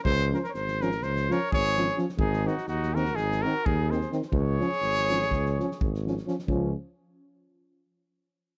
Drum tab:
SD |-oooooooooo---oooo|-ooooooooo----oooo|--oooo-ooooo-ooooo|------------------|
BD |o-----------o-----|o-----------o-----|o-------o---o-----|o-----------------|